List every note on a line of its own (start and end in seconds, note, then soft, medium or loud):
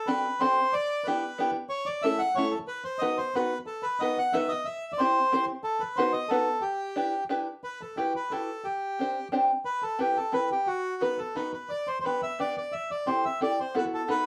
0.07 0.25 C4 medium
0.07 0.25 D4 soft
0.07 0.26 F#4 soft
0.07 0.26 A4 medium
0.07 0.41 B4 medium
0.40 0.58 C4 medium
0.40 0.58 D4 soft
0.40 0.58 F#4 soft
0.40 0.58 A4 medium
0.40 0.74 C5 medium
0.73 1.07 D5 medium
1.04 1.23 B3 soft
1.04 1.24 D4 soft
1.04 1.24 E4 soft
1.04 1.24 G4 medium
1.04 1.51 B4 medium
1.38 1.55 B3 soft
1.38 1.56 D4 soft
1.38 1.56 E4 soft
1.38 1.56 G4 medium
1.69 1.88 C#5 medium
1.86 2.03 D5 medium
2.02 2.21 A3 medium
2.02 2.21 C#4 soft
2.02 2.21 E4 soft
2.02 2.22 A4 medium
2.02 2.21 E5 medium
2.19 2.36 F#5 medium
2.35 2.54 A3 medium
2.35 2.54 C#4 medium
2.35 2.54 E4 soft
2.35 2.55 A4 medium
2.35 2.53 C#5 medium
2.51 2.59 A4 medium
2.68 2.84 B4 medium
2.84 3.02 C5 medium
2.99 3.19 B3 soft
2.99 3.19 D#4 soft
2.99 3.19 F#4 soft
2.99 3.19 B4 medium
2.99 3.18 D#5 medium
3.17 3.35 C5 medium
3.34 3.53 B3 soft
3.34 3.53 D#4 soft
3.34 3.53 F#4 soft
3.34 3.58 B4 medium
3.34 3.53 B4 medium
3.66 3.85 A4 medium
3.83 4.01 B4 medium
4.00 4.18 B3 soft
4.00 4.19 D#4 soft
4.00 4.19 F#4 soft
4.00 4.19 B4 medium
4.00 4.18 D#5 medium
4.18 4.35 F#5 medium
4.33 4.51 B3 medium
4.33 4.52 D#4 soft
4.33 4.52 F#4 soft
4.33 4.52 B4 medium
4.33 4.52 E5 medium
4.49 4.67 D#5 medium
4.65 4.92 E5 medium
4.92 5.00 D5 medium
4.98 5.17 C4 medium
4.98 5.18 E4 medium
4.98 5.18 G4 soft
4.98 5.45 C5 medium
4.98 5.18 C5 medium
5.32 5.50 C4 soft
5.32 5.50 E4 soft
5.32 5.50 G4 soft
5.32 5.50 C5 medium
5.64 5.82 A4 medium
5.80 5.98 B4 medium
5.97 6.15 B3 medium
5.97 6.15 D#4 medium
5.97 6.15 F#4 soft
5.97 6.16 B4 medium
5.97 6.13 C5 medium
6.13 6.30 D#5 medium
6.29 6.47 B3 medium
6.29 6.48 D#4 medium
6.29 6.48 F#4 soft
6.29 6.63 A4 medium
6.29 6.48 B4 medium
6.61 7.24 G4 medium
6.96 7.13 D4 soft
6.96 7.13 E4 soft
6.96 7.14 G4 soft
6.96 7.14 B4 soft
7.29 7.47 D4 medium
7.29 7.47 E4 soft
7.29 7.47 G4 soft
7.29 7.47 B4 medium
7.64 7.82 B4 medium
7.81 7.98 A4 medium
7.97 8.15 E4 soft
7.97 8.15 F#4 soft
7.97 8.13 G4 medium
7.97 8.15 G4 soft
7.97 8.16 B4 soft
8.16 8.32 B4 medium
8.31 8.49 E4 soft
8.31 8.49 F#4 soft
8.31 8.50 G4 soft
8.31 8.66 A4 medium
8.31 8.50 B4 soft
8.64 9.28 G4 medium
8.99 9.17 C4 soft
8.99 9.17 D4 soft
8.99 9.17 G4 soft
8.99 9.18 C5 soft
9.32 9.50 C4 medium
9.32 9.50 D4 medium
9.32 9.50 G4 soft
9.32 9.50 C5 medium
9.65 9.84 B4 medium
9.83 10.00 A4 medium
9.99 10.17 C4 soft
9.99 10.17 E4 soft
9.99 10.18 G4 medium
9.99 10.17 A4 soft
9.99 10.17 B4 soft
10.17 10.34 A4 medium
10.32 10.50 C4 soft
10.32 10.50 E4 soft
10.32 10.51 A4 soft
10.32 10.50 B4 medium
10.32 10.51 B4 medium
10.52 10.68 G4 medium
10.67 11.02 F#4 medium
11.01 11.19 B3 soft
11.01 11.19 D#4 soft
11.01 11.19 F#4 soft
11.01 11.19 B4 medium
11.01 11.20 B4 medium
11.18 11.36 A4 medium
11.36 11.54 B3 soft
11.36 11.54 D#4 soft
11.36 11.54 F#4 soft
11.36 11.52 B4 medium
11.36 11.54 B4 soft
11.54 11.71 B4 medium
11.69 11.88 D5 medium
11.87 11.99 C5 medium
12.00 12.05 C5 medium
12.04 12.23 B3 soft
12.04 12.23 D4 soft
12.04 12.23 G4 soft
12.04 12.21 B4 medium
12.04 12.23 B4 soft
12.23 12.40 E5 medium
12.39 12.57 B3 soft
12.39 12.57 D4 soft
12.39 12.57 G4 soft
12.39 12.57 B4 soft
12.39 12.56 D5 medium
12.58 12.74 D5 medium
12.72 12.91 E5 medium
12.91 13.08 D5 medium
13.07 13.24 C4 soft
13.07 13.25 E4 soft
13.07 13.25 G4 soft
13.07 13.25 A4 soft
13.07 13.25 C5 medium
13.25 13.40 E5 medium
13.41 13.58 C4 soft
13.41 13.59 E4 soft
13.41 13.59 G4 soft
13.41 13.59 A4 medium
13.41 13.60 D5 medium
13.60 13.76 C5 medium
13.75 14.02 B3 medium
13.75 14.02 E4 medium
13.75 14.02 F#4 soft
13.75 14.02 A4 medium
13.75 13.85 B4 medium
13.94 14.08 A4 medium
14.08 14.26 B3 soft
14.08 14.26 D#4 soft
14.08 14.26 F#4 soft
14.08 14.26 A4 soft
14.08 14.26 B4 medium